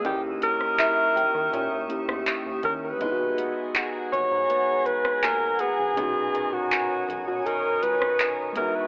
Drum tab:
HH |x-x-x-x-x-x-x-x-|x-x-x-x-x-x-x-x-|x-x-x-x-x-x-x-x-|
CP |----x-------x---|----x-------x---|----x-------x---|
SD |---r-------r----|-----------r----|-----------r----|
BD |o-----o-------o-|o-----o---o-----|o-----o-------o-|